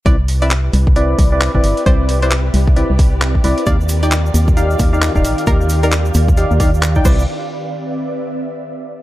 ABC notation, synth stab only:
X:1
M:4/4
L:1/16
Q:"Swing 16ths" 1/4=133
K:C
V:1 name="Synth stab"
[CEBd] z2 [CEBe] z4 [CEBd]3 [CEBd]2 [CEBd]3 | [CEBd]3 [CEBd] z4 [CEBd] z4 z [CEBd]2 | [_EGdf] z2 [EGdg] z4 [EGdf]3 [EGdf]2 [EGdf]3 | [_EGdf]3 [EGdf] z4 [EGdf] z [EGdf] z2 [EGdg] [C=EBd]2 |
z16 |]